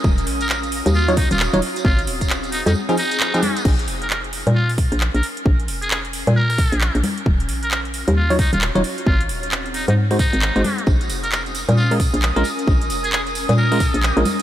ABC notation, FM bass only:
X:1
M:4/4
L:1/16
Q:"Swing 16ths" 1/4=133
K:Bbm
V:1 name="FM bass" clef=bass
E,,,2 B,,,4- B,,, E,,4 E,,,2 E,,, z2 | A,,,2 E,,,4- E,,, F,, z8 | B,,,2 F,,,4- F,,, B,,4 B,,,2 B,,, z2 | B,,,2 F,,,4- F,,, B,,4 B,,,2 B,,, z2 |
E,,,2 B,,,4- B,,, E,,4 E,,,2 E,,, z2 | A,,,2 E,,,4- E,,, A,,4 A,,,2 A,,, z2 | B,,,2 F,,,4- F,,, B,,4 B,,,2 B,,, z2 | B,,,2 F,,,4- F,,, B,,4 B,,,2 B,,, z2 |]